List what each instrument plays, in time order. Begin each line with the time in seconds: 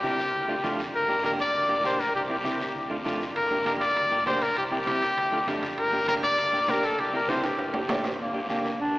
Already playing: fingered electric bass C2, trumpet G4
0.03 clean electric guitar C4 E4 G4, high conga, short guiro
0.18 high conga, short guiro
0.33 fingered electric bass D2, long guiro
0.48 fingered electric bass D2, clean electric guitar A3 D4 F4
0.63 fingered electric bass F2, clean electric guitar A3 D4 F4, high conga, short guiro
0.79 short guiro
0.94 fingered electric bass G1, trumpet A#4, long guiro
1.08 clean electric guitar A#3 D4 G4
1.23 clean electric guitar A#3 D4 G4, trumpet A#4, high conga, short guiro
1.39 trumpet D5, high conga, short guiro
1.54 fingered electric bass D2, long guiro
1.68 fingered electric bass G1, clean electric guitar A#3 D4 G4
1.84 fingered electric bass A#1, clean electric guitar A#3 D4 G4, trumpet C5, high conga, short guiro
2.00 trumpet A#4, short guiro
2.15 fingered electric bass C2, trumpet G4, long guiro
2.29 clean electric guitar C4 E4 G4, trumpet G4
2.44 clean electric guitar C4 E4 G4, high conga, short guiro
2.60 high conga, short guiro
2.75 fingered electric bass D2, long guiro
2.90 fingered electric bass D2, clean electric guitar A3 D4 F4
3.05 fingered electric bass F2, clean electric guitar A3 D4 F4, high conga, short guiro
3.21 short guiro
3.36 fingered electric bass G1, trumpet A#4, high timbale, long guiro
3.50 clean electric guitar A#3 D4 G4
3.65 clean electric guitar A#3 D4 G4, trumpet A#4, high conga, high timbale, short guiro
3.81 trumpet D5, high timbale, short guiro
3.96 fingered electric bass D2, high timbale, long guiro
4.11 fingered electric bass G1, clean electric guitar A#3 D4 G4
4.26 fingered electric bass A#1, clean electric guitar A#3 D4 G4, trumpet C5, high conga, high timbale, low timbale, short guiro
4.42 trumpet A#4, high timbale, short guiro
4.57 fingered electric bass C2, trumpet G4, high timbale, long guiro
4.71 clean electric guitar C4 E4 G4, trumpet G4
4.86 clean electric guitar C4 E4 G4, high conga, high timbale, short guiro
5.02 high conga, high timbale, short guiro
5.17 fingered electric bass D2, high timbale, long guiro
5.32 fingered electric bass D2, clean electric guitar A3 D4 F4
5.47 fingered electric bass F2, clean electric guitar A3 D4 G4, high conga, high timbale, short guiro
5.63 high timbale, short guiro
5.78 fingered electric bass G1, trumpet A#4, high timbale, long guiro
5.92 clean electric guitar A#3 D4 G4
6.08 clean electric guitar A#3 D4 G4, trumpet A#4, high conga, high timbale, short guiro
6.23 trumpet D5, high conga, high timbale, short guiro
6.38 fingered electric bass D2, high timbale, long guiro
6.53 fingered electric bass G1, clean electric guitar A#3 D4 G4
6.68 fingered electric bass A#1, clean electric guitar A#3 D4 G4, trumpet A#4, high conga, high timbale, low timbale, short guiro
6.83 trumpet A4, high timbale, short guiro
6.98 fingered electric bass C2, trumpet G4, high timbale, long guiro
7.13 clean electric guitar C4 E4 G4, trumpet A#4
7.28 clean electric guitar C4 E4 G4, trumpet C5, high conga, high timbale, short guiro
7.44 trumpet G4, high timbale, short guiro
7.58 fingered electric bass G1, high timbale, long guiro
7.73 fingered electric bass G1, clean electric guitar A3 D4 G4, low timbale
7.88 fingered electric bass A1, clean electric guitar A3 D4 G4, high conga, low timbale, short guiro
8.04 low timbale, short guiro
8.19 fingered electric bass G1, clarinet A#3, long guiro
8.34 clean electric guitar A#3 D4 G4
8.49 clean electric guitar A#3 D4 G4, clarinet A#3, high conga, short guiro
8.65 high conga, short guiro
8.79 fingered electric bass A#1, clarinet D4, long guiro